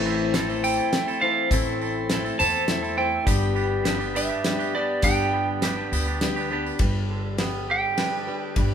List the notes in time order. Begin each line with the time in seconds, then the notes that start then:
Already playing: A1 A2 E3 A3 C4 E4 A4 C5
0.04 E3 C4 E4 A4, tambourine
0.34 A2 E3 A3 C4 E4 A4 C5, snare, closed hi-hat
0.49 C4 E4 A4, tambourine
0.64 E3 C4 E4 A4 G5, tambourine
0.78 C4 E4 A4
0.92 A3 C4 E4 C5, snare, closed hi-hat
1.08 C4 E4 A4, tambourine
1.21 E3 A3 C4 E4 A4 C5 F5
1.51 A1 A2 E3 A3 C4 E4 A4 C5, kick, closed hi-hat, tambourine
1.80 E3 C4 E4 A4, tambourine
2.10 A2 E3 A3 C4 E4 A4 C5, snare, closed hi-hat
2.25 C4 E4 A4, tambourine
2.38 E2 E3 A3 C4 E4 A4 C5 A5, tambourine
2.53 C4 E4 A4
2.68 A3 C4 E4 C5, snare, closed hi-hat
2.83 C4 E4 A4, tambourine
2.96 E3 C4 E4 A4 C5 G5
3.00 A3
3.25 G1 G2 D3 G3 B3 D4 G4 B4, kick, closed hi-hat, tambourine
3.54 G3 B3 D4 G4, tambourine
3.83 G2 D3 G3 B3 D4 G4, snare, closed hi-hat
3.88 B4
3.99 G3 B3 D4 G4, tambourine
4.14 G3 B3 D4 G4 B4 E5, tambourine
4.29 G3 B3 D4 G4
4.44 G3 D4 G4 B4, snare, closed hi-hat
4.59 G3 B3 D4 G4, tambourine
4.74 G3 B3 D4 G4 B4 D5
5.02 G1 G2 D3 G3 B3 D4 G4 G5, kick, closed hi-hat, tambourine
5.07 B4
5.32 G3 B3 D4 G4
5.61 G2 D3 G3 B3 D4 G4 B4, snare, closed hi-hat, tambourine
5.76 G3 B3 D4 G4
5.92 D2 G3 B3 D4 G4, tambourine
6.07 G3 B3 D4 G4
6.21 G3 D4 G4 B4, snare, closed hi-hat, tambourine
6.36 G3 B3 D4 G4, tambourine
6.50 G3 B3 D4 G4 B4
6.66 tambourine
6.79 G1 G2 G3 D4 G4 B4, kick, ride
7.11 D3
7.38 G3 B3 D4 G4 B4, snare, ride
7.70 G4 G5
7.97 G3 D4 G4 B4, snare, ride
8.27 G3 D4 G4 B4
8.56 G1 G2 G3 D4 G4 B4, kick, ride